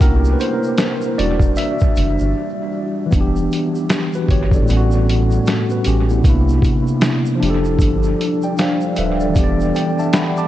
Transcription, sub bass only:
0.01 0.36 C2 loud
1.19 1.53 E1 loud
1.97 2.17 F#1 medium
2.20 2.34 G1 medium
3.13 3.48 E1 loud
4.29 4.64 G1 medium
4.70 5.39 A1 loud
5.86 6.21 A1 medium
6.25 6.59 C2 loud
7.42 7.77 F1 loud
7.79 8.14 G1 medium
8.98 9.38 D1 medium
9.36 9.71 E1 loud

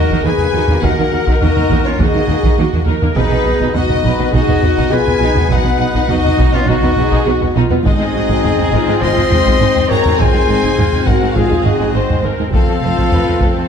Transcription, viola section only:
0.00 0.25 A#4 medium
0.26 0.55 G#4 medium
0.54 0.83 F#4 medium
0.82 2.00 A#4 medium
2.01 2.59 G#4 medium
2.58 2.88 F#4 medium
2.87 3.16 A#4 medium
3.16 3.75 G#4 medium
3.75 4.04 F#4 medium
4.04 4.33 B4 medium
4.32 4.62 G#4 medium
4.63 4.92 F#4 medium
4.93 5.22 F4 medium
5.23 6.68 D#4 medium
6.67 6.97 F#4 medium
6.98 7.27 G#4 loud
7.27 7.56 F#4 medium
7.56 7.84 F4 medium
7.84 8.13 D#4 medium
8.15 8.43 F#4 medium
8.44 8.73 G#4 medium
8.73 9.60 F4 medium
9.60 9.89 D#4 medium
9.91 10.19 F#4 medium
10.21 10.49 F4 medium
10.49 10.77 D#4 medium
10.79 11.07 F4 medium
11.08 11.35 F#4 medium
11.37 11.94 G#4 medium
11.96 12.24 C5 medium
12.24 12.53 A#4 medium
12.53 12.81 A4 medium
12.83 13.12 C5 medium
13.12 13.41 B4 medium
13.43 13.68 A4 medium

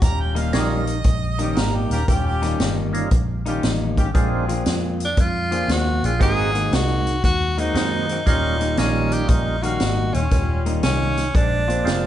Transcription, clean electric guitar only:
0.35 0.51 D#3 medium
0.35 0.52 G3 medium
0.35 0.52 A#3 medium
0.35 0.52 D#4 medium
0.52 0.92 D#3 medium
0.52 0.93 G3 medium
0.52 0.93 A#3 medium
0.52 0.93 D#4 medium
1.39 1.55 D#3 medium
1.39 1.55 G3 medium
1.39 1.55 A#3 medium
1.39 1.56 D#4 medium
1.56 1.96 D#3 medium
1.56 1.96 G3 medium
1.56 1.96 A#3 medium
1.56 1.96 D#4 medium
2.42 2.57 D#3 medium
2.42 2.58 G3 medium
2.42 2.58 A#3 medium
2.42 2.59 D#4 medium
2.59 2.99 D#3 medium
2.59 2.99 G3 medium
2.59 2.99 A#3 medium
2.59 3.00 D#4 medium
3.46 3.62 D#3 medium
3.46 3.62 G3 medium
3.46 3.63 A#3 medium
3.46 3.63 D#4 medium
3.63 4.03 D#3 medium
3.63 4.03 G3 medium
3.63 4.03 A#3 medium
3.63 4.03 D#4 medium
4.48 4.65 F3 medium
4.48 4.65 A#3 medium
4.48 4.66 C4 medium
4.48 4.66 F4 medium
4.66 5.06 F3 medium
4.66 5.06 A#3 medium
4.66 5.06 C4 medium
4.66 5.06 F4 medium
5.51 5.67 F3 medium
5.51 5.67 A#3 medium
5.51 5.68 C4 medium
5.51 5.68 F4 medium
5.68 6.08 F3 medium
5.68 6.08 A#3 medium
5.68 6.08 C4 medium
5.68 6.08 F4 medium
6.55 6.70 D#3 medium
6.55 6.71 G#3 medium
6.55 6.72 A#3 medium
6.55 6.72 D#4 medium
6.72 7.11 D#3 medium
6.72 7.11 G#3 medium
6.72 7.12 A#3 medium
6.72 7.12 D#4 medium
7.58 7.74 D#3 medium
7.58 7.74 G#3 medium
7.58 7.75 A#3 medium
7.58 7.75 D#4 medium
7.75 8.14 D#3 medium
7.75 8.15 G#3 medium
7.75 8.15 A#3 medium
7.75 8.15 D#4 medium
8.60 8.76 D#3 medium
8.60 8.77 G3 medium
8.60 8.77 A#3 medium
8.60 8.77 D#4 medium
8.77 9.17 D#3 medium
8.77 9.17 G3 medium
8.77 9.17 A#3 medium
8.77 9.17 D#4 medium
9.63 9.80 D#3 medium
9.63 9.80 G3 medium
9.63 9.80 A#3 medium
9.63 9.80 D#4 medium
9.81 10.20 D#3 medium
9.81 10.20 G3 medium
9.81 10.20 A#3 medium
9.81 10.20 D#4 medium
10.66 10.82 D#3 medium
10.66 10.82 G3 medium
10.66 10.82 A#3 medium
10.66 10.83 D#4 medium
10.83 11.22 D#3 medium
10.83 11.22 G3 medium
10.83 11.23 A#3 medium
10.83 11.23 D#4 medium
11.68 11.84 F3 medium
11.68 11.84 A#3 medium
11.68 11.85 C4 medium
11.68 11.85 F4 medium
11.85 12.06 F3 medium
11.85 12.06 A#3 medium
11.85 12.06 C4 medium
11.85 12.06 F4 medium

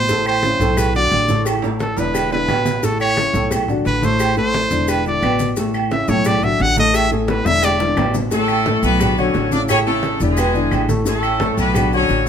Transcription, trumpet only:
0.00 0.24 C5 loud
0.28 0.80 C5 loud
0.79 0.95 B4 medium
0.96 1.43 D5 loud
1.81 2.00 A4 medium
1.98 2.32 B4 loud
2.32 2.86 B4 loud
2.84 3.00 A4 medium
3.01 3.48 C#5 loud
3.87 4.06 B4 loud
4.05 4.38 C5 loud
4.38 4.91 C5 loud
4.90 5.06 B4 medium
5.07 5.54 D5 loud
5.92 6.11 E5 medium
6.09 6.28 C#5 loud
6.27 6.45 D5 medium
6.44 6.63 E5 loud
6.62 6.78 F#5 loud
6.79 6.97 D#5 loud
6.96 7.12 E5 loud
7.13 7.29 G#4 medium
7.29 7.48 B4 loud
7.46 7.66 E5 loud
7.65 8.15 D5 medium

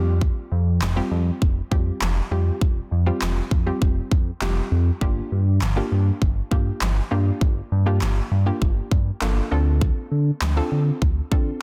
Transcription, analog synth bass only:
0.00 0.30 F2 medium
0.51 0.83 F2 loud
0.81 1.01 F1 loud
1.11 1.31 F2 loud
1.42 1.61 F1 loud
1.72 1.91 F2 loud
2.01 2.21 F1 loud
2.31 2.51 F2 loud
2.61 2.81 F1 loud
2.91 3.11 F2 loud
3.21 3.41 F1 loud
3.51 3.71 F2 loud
3.82 4.01 F1 loud
4.12 4.31 F2 loud
4.42 4.61 F1 medium
4.71 4.91 F2 loud
5.01 5.21 G1 loud
5.32 5.63 G2 medium
5.61 5.81 G1 loud
5.91 6.11 G2 loud
6.22 6.41 G1 loud
6.52 6.71 G2 loud
6.81 7.01 G1 medium
7.11 7.31 G2 loud
7.41 7.61 G1 loud
7.71 8.03 G2 medium
8.01 8.21 G1 loud
8.31 8.51 G2 loud
8.62 8.81 G1 loud
8.91 9.11 G2 loud
9.21 9.41 G1 loud
9.52 9.91 D2 loud
10.11 10.31 D3 medium
10.41 10.61 D2 loud
10.71 10.91 D3 medium
11.02 11.21 D2 loud
11.32 11.51 D3 loud

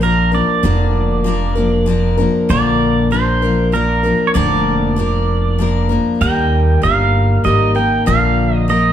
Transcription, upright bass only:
0.00 0.39 A#1 medium
0.64 2.25 F1 medium
2.50 4.11 A#1 medium
4.35 5.97 F1 medium
6.21 6.75 D#2 medium
6.83 7.36 G1 medium
7.45 7.98 G#1 medium
8.07 8.93 A#1 medium

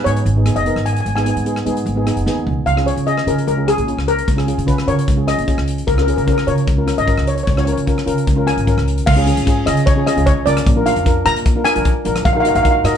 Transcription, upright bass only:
0.06 0.21 G#2 medium
0.25 0.48 G#1 medium
0.56 0.71 F1 medium
0.76 0.98 G#1 medium
1.05 1.28 G#1 medium
1.36 1.59 G#2 medium
1.66 1.81 G#2 medium
1.86 2.09 G#1 medium
2.16 2.24 F1 medium
2.26 2.44 D#2 medium
2.46 2.64 C#2 medium
2.66 2.89 C#2 medium
2.96 3.19 C#3 medium
3.27 3.42 C#3 medium
3.47 3.70 C#2 medium
3.78 3.92 A#1 medium
3.97 4.19 C#2 medium
4.28 4.50 C#2 medium
4.58 4.80 C#3 medium
4.88 5.02 C#3 medium
5.08 5.30 C#2 medium
5.38 5.53 A#1 medium
5.58 5.80 C#2 medium
5.88 6.10 C#2 medium
6.17 6.40 C#3 medium
6.47 6.62 C#3 medium
6.67 6.90 C#2 medium
6.97 7.12 G#1 medium
7.17 7.40 C#2 medium
7.47 7.70 C#2 medium
7.77 7.99 C#3 medium
8.07 8.22 C#3 medium
8.27 8.50 C#2 medium
8.57 8.72 G#1 medium
8.77 8.99 C#2 medium
9.07 9.29 C#2 loud
9.37 9.59 G#1 medium
9.67 10.04 C#3 medium
10.16 10.31 C#2 medium
10.46 10.61 C#2 medium
10.66 10.89 A#1 loud
10.96 11.18 F2 medium
11.26 11.63 A#2 medium
11.76 11.91 A#1 medium
12.05 12.20 A#1 medium
12.25 12.48 A#1 loud
12.55 12.77 A#1 medium
12.84 12.97 A#2 medium

